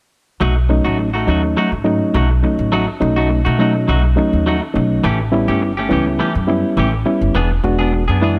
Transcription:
0.40 upright bass B1, clean electric guitar F#3 A3 D#4 F#4
0.56 muted clean electric guitar stroke
0.69 reed electric piano F#3 A3 C#4 D#4, muted clean electric guitar stroke
0.85 upright bass A1, clean electric guitar A3 D#4 F#4
0.98 muted clean electric guitar stroke
1.14 clean electric guitar A3 D#4 F#4
1.27 upright bass D#2, reed electric piano F#3 A3 C#4 D#4, clean electric guitar F#3 A3 D#4 F#4
1.43 muted clean electric guitar stroke
1.57 clean electric guitar F#3 A3 D#4 F#4
1.72 upright bass G#2, muted clean electric guitar stroke
1.84 reed electric piano F#3 A3 C#4 D#4, muted clean electric guitar stroke
2.14 upright bass B1, clean electric guitar F#3 A3 D#4 F#4
2.30 muted clean electric guitar stroke
2.43 reed electric piano F#3 A3 C#4 D#4, muted clean electric guitar stroke
2.59 upright bass A1
2.72 clean electric guitar F#3 A3 D#4 F#4
2.87 muted clean electric guitar stroke
3.00 upright bass B1, reed electric piano F#3 A3 C#4 D#4, muted clean electric guitar stroke
3.16 clean electric guitar A3 D#4 F#4
3.30 muted clean electric guitar stroke
3.45 upright bass B2, clean electric guitar A3 D#4 F#4
3.59 reed electric piano F#3 A3 C#4 D#4, clean electric guitar F#3 A3 D#4 F#4
3.74 muted clean electric guitar stroke
3.88 upright bass B1, clean electric guitar F#3 A3 D#4 F#4
4.04 muted clean electric guitar stroke
4.16 reed electric piano F#3 A3 C#4 D#4, muted clean electric guitar stroke
4.33 upright bass D#2
4.46 clean electric guitar F#3 A3 D#4 F#4
4.62 muted clean electric guitar stroke
4.74 upright bass B1, reed electric piano F#3 A3 C#4 D#4, muted clean electric guitar stroke
5.04 upright bass A1, clean electric guitar E3 A3 C#4 G4
5.20 muted clean electric guitar stroke
5.32 reed electric piano G3 B3 C#4 E4, muted clean electric guitar stroke
5.48 upright bass G1, clean electric guitar A3 C#4 G4
5.62 muted clean electric guitar stroke
5.77 clean electric guitar A3 C#4 G4
5.89 upright bass C#2, clean electric guitar E3 A3 C#4 G4, reed electric piano G3 B3 C#4 E4
6.06 muted clean electric guitar stroke
6.19 clean electric guitar E3 A3 C#4 G4
6.35 upright bass F#2, muted clean electric guitar stroke
6.47 reed electric piano G3 B3 C#4 E4, muted clean electric guitar stroke
6.77 upright bass A1, clean electric guitar E3 A3 C#4 G4
6.92 muted clean electric guitar stroke
7.06 reed electric piano G3 B3 C#4 E4, muted clean electric guitar stroke
7.21 upright bass F#1
7.35 upright bass E1, clean electric guitar E3 B3 D4 G#4
7.51 muted clean electric guitar stroke
7.64 upright bass E1, reed electric piano G#3 B3 D4 F#4, muted clean electric guitar stroke
7.79 clean electric guitar B3 D4 G#4
7.93 muted clean electric guitar stroke
8.08 upright bass F#2, clean electric guitar B3 D4 G#4
8.21 clean electric guitar E3 B3 D4 G#4, reed electric piano G#3 B3 D4 E4

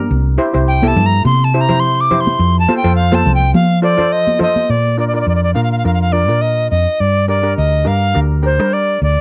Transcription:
Already playing: steel pan G4 A#4
0.11 fingered electric bass C2
0.38 steel pan E4 G4 C5
0.53 fingered electric bass C2, steel pan E4 G4 C5
0.68 recorder G5
0.83 steel pan E4 G4 A4, high conga
0.88 recorder A5
0.96 fingered electric bass G2, low conga
1.06 recorder A#5
1.25 fingered electric bass C3, recorder C6, high conga
1.44 recorder A5
1.54 steel pan E4 G4 C5
1.61 recorder A#5
1.68 steel pan E4 G4 C5, low conga
1.80 recorder C6
2.01 recorder D6
2.11 steel pan E4 G4 C5, low conga
2.20 recorder C6
2.27 high conga
2.39 fingered electric bass F2
2.59 recorder A5
2.68 steel pan F4 A4 C5, high conga
2.77 recorder G5
2.84 fingered electric bass F2, steel pan F4 A4 C5
2.96 recorder F5
3.12 steel pan F4 A4 C5, recorder A5, high conga
3.25 fingered electric bass C2, low conga
3.35 recorder G5
3.54 fingered electric bass F3, recorder F5, high conga
3.82 steel pan F4 A4 C5, recorder D5
3.97 steel pan F4 A4 C5, low conga
4.12 recorder D#5
4.27 high conga
4.39 steel pan F4 A4 C5, recorder D#5, low conga
4.56 high conga
4.70 fingered electric bass A#2, recorder D5
4.98 steel pan D4 F4 A#4, recorder D5
5.08 recorder D5
5.14 steel pan D4 F4 A#4, recorder D5
5.21 recorder D5
5.27 fingered electric bass F2, recorder D5
5.35 recorder D5
5.43 recorder D5
5.54 fingered electric bass A#2, steel pan D4 F4 A#4, recorder F5
5.64 recorder F5
5.72 recorder F5
5.78 recorder F5
5.84 fingered electric bass F2, steel pan D4 F4 A#4, recorder F5
5.94 recorder F5
6.02 recorder F5
6.12 steel pan D4 F4 A#4, recorder D5
6.28 fingered electric bass A#2, steel pan D4 F4 A#4
6.41 recorder D#5
6.70 fingered electric bass F2, recorder D#5
7.00 fingered electric bass G2, recorder D5
7.28 steel pan D4 G4 A#4, recorder D5
7.43 steel pan D4 G4 A#4
7.57 fingered electric bass D2, recorder D#5
7.85 fingered electric bass G2, steel pan D4 G4 A#4, recorder F5
8.14 fingered electric bass D2, steel pan D4 G4 A#4
8.42 steel pan D4 G4 A#4, recorder C5
8.59 fingered electric bass G3, steel pan D4 G4 A#4
8.73 recorder D5
9.02 fingered electric bass D2, recorder D5

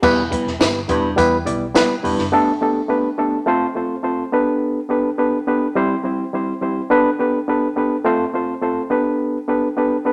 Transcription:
0.02 fingered electric bass E1, baritone saxophone E2, reed electric piano G3 B3 E4 G4 B4, kick, crash, tambourine
0.31 reed electric piano G3 B3 E4 G4 B4, kick, closed hi-hat
0.46 fingered electric bass E1, snare
0.59 fingered electric bass G1, reed electric piano G3 B3 E4 G4 B4, snare, closed hi-hat, tambourine
0.88 fingered electric bass E1, baritone saxophone G2, reed electric piano G3 B3 E4 G4 B4, kick, closed hi-hat
1.16 fingered electric bass E2, reed electric piano G3 B3 E4 G4 B4, kick, closed hi-hat, tambourine
1.45 fingered electric bass B1, reed electric piano G3 B3 E4 G4 D5, closed hi-hat
1.74 reed electric piano G3 B3 E4 G4 B4, snare, closed hi-hat, tambourine
2.03 fingered electric bass E1, baritone saxophone G2, reed electric piano G3 B3 E4 G4 B4, open hi-hat
2.18 fingered electric bass F#1, snare
2.32 reed electric piano A3 B3 D4 G4 A4
2.61 reed electric piano A3 B3 D4 G4 A4
2.88 reed electric piano A3 B3 D4 G4 B4
3.18 reed electric piano A3 B3 D4 G4 A4
3.46 reed electric piano A3 C4 F4 A4 C5
3.75 reed electric piano A3 C4 F4 A4 C5
4.03 reed electric piano A3 C4 F4 A4 C5
4.32 reed electric piano B3 D4 G4 A4 B4
4.89 reed electric piano B3 D4 G4 A4 B4
5.18 reed electric piano B3 D4 G4 A4 B4
5.47 reed electric piano B3 D4 G4 A4 B4
5.75 reed electric piano G3 C4 E4 G4 C5
6.04 reed electric piano G3 C4 E4 G4 C5
6.33 reed electric piano G3 C4 E4 G4 C5
6.61 reed electric piano G3 C4 E4 G4 C5
6.90 reed electric piano B3 D4 G4 A4 B4
7.19 reed electric piano B3 D4 G4 A4 B4
7.48 reed electric piano B3 D4 G4 A4 B4
7.76 reed electric piano B3 D4 G4 A4 B4
8.04 reed electric piano A3 C4 F4 A4 C5
8.34 reed electric piano A3 C4 F4 A4 C5
8.62 reed electric piano A3 C4 F4 A4 C5
8.90 reed electric piano B3 D4 G4 A4 B4
9.48 reed electric piano B3 D4 G4 A4 B4
9.77 reed electric piano B3 D4 G4 A4 B4
10.05 reed electric piano B3 D4 G4 A4 B4

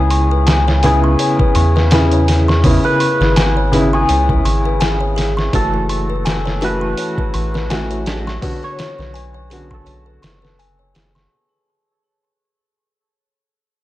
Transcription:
Already playing: sub bass C#2, felt piano C#3 B3 E4, hammered dulcimer G#4 B4, music box B4
0.10 music box C#6, open hi-hat
0.31 music box B4
0.47 music box G#5, snare, open hi-hat
0.68 music box C#5, snare
0.83 felt piano C#3 B3 E4, music box G#4, hammered dulcimer G#4, open hi-hat
1.04 music box C#6
1.19 music box C#5, open hi-hat
1.39 music box B4, kick
1.55 sub bass E2, music box C#6, open hi-hat
1.76 music box B4, snare
1.91 felt piano C#3 B3 E4, music box G#5, snare, open hi-hat
2.12 music box C#5, closed hi-hat
2.28 music box G#4, snare, open hi-hat
2.48 music box C#6, snare
2.64 felt piano C#3 B3 E4, music box C#5, kick, open hi-hat
2.84 music box B4, hammered dulcimer B4
3.00 music box C#6, open hi-hat
3.21 sub bass G#1, music box B4, snare
3.36 music box G#5, snare, open hi-hat
3.57 music box C#5
3.72 felt piano C#3 B3 E4, music box G#4, open hi-hat
3.93 hammered dulcimer G#4, music box C#6
4.09 sub bass C#2, music box C#5, open hi-hat
4.29 music box B4, kick
4.45 sub bass G#1, music box C#6, open hi-hat
4.65 music box B4
4.80 music box G#5, snare, open hi-hat
5.01 music box C#5
5.16 music box G#4, snare, open hi-hat
5.37 music box C#6, snare
5.53 sub bass F#1, felt piano E3 A3 F#4, hammered dulcimer A4, music box C#5, kick, open hi-hat
5.74 music box B4
5.89 music box C#6, open hi-hat
6.10 music box B4
6.25 music box G#5, snare, open hi-hat
6.45 music box C#5, snare
6.61 felt piano E3 A3 F#4, music box G#4, hammered dulcimer B4, open hi-hat
6.81 music box C#6
6.97 music box C#5, open hi-hat
7.18 music box B4, kick
7.34 sub bass A1, music box C#6, open hi-hat
7.54 music box B4, snare
7.70 felt piano E3 A3 F#4, music box G#5, snare, open hi-hat
7.91 music box C#5, closed hi-hat
8.06 music box G#4, snare, open hi-hat
8.27 music box C#6, snare
8.41 felt piano D3 B3 F#4, music box C#5, kick, open hi-hat
8.63 music box B4, hammered dulcimer C#5
8.79 music box C#6, snare, open hi-hat
8.99 sub bass B1, music box B4, snare
9.14 music box G#5, open hi-hat
9.34 music box C#5
9.50 felt piano D3 B3 F#4, music box G#4, open hi-hat
9.71 hammered dulcimer A4, music box C#6, kick
9.86 sub bass B1, music box C#5, open hi-hat
10.06 music box B4
10.22 sub bass F#1, music box C#6, snare, open hi-hat
10.42 music box B4, snare
10.59 music box G#5, open hi-hat
10.79 music box C#5
10.94 sub bass F#1, music box G#4, snare, open hi-hat
11.15 music box C#6, snare

